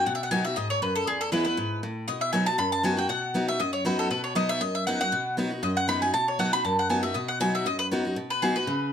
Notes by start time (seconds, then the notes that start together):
0.06 B2 F#5
0.15 E5
0.23 F#5
0.31 F#3 B3 D#4 F#4 G#5
0.45 D#4 F#4 E5
0.56 G#2 D#5
0.70 C#5
0.82 F#2 B4
0.95 A4
1.07 E2 G#4
1.21 A4
1.32 E3 G#3 B3 E4 B4
1.45 B3 E4 B4
1.57 G#2
1.83 A2
2.08 B2 D#5
2.21 E5
2.33 F#3 B3 D#4 F#4 G#5
2.46 D#4 F#4 A5
2.58 F#2 B5
2.72 A5
2.83 F#3 B3 D#4 F#4 G#5
2.97 D#4 F#4 G5
3.09 B2 F#5
3.34 F#3 B3 D#4 F#4
3.48 D#4 F#4 E5
3.60 F#2 D#5
3.73 C#5
3.85 F#3 B3 D#4 F#4 B4
3.99 A4
4.10 B2 B4
4.24 C#5
4.35 F#3 B3 D#4 F#4 D#5
4.49 E5
4.61 F#2 D#5
4.75 E5
4.87 F#3 B3 D#4 F#4 F#5
5.00 D#4 F#4 F#5
5.12 B2
5.37 F#3 B3 D#4 F#4
5.50 D#4 F#4
5.63 F#2 D#5
5.77 F#5
5.88 F#3 B3 D#4 F#4 B5
6.02 D#4 F#4 G#5
6.14 B2 A5
6.28 C#5
6.39 F#3 B3 D#4 F#4 F#5
6.53 D#4 F#4 B5
6.64 F#2 A5
6.79 F#5
6.89 F#3 B3 D#4 F#4 G#5
7.03 D#4 F#4 E5
7.14 B2 D#5
7.28 F#5
7.40 F#3 B3 D#4 F#4 G#5
7.55 E5
7.66 F#2 D#5
7.79 B4
7.91 F#3 B3 D#4 F#4
8.05 D#4 F#4
8.16 B2
8.30 B4
8.42 F#3 B3 D#4 F#4 G#4
8.56 D#4 F#4 B4
8.67 C#3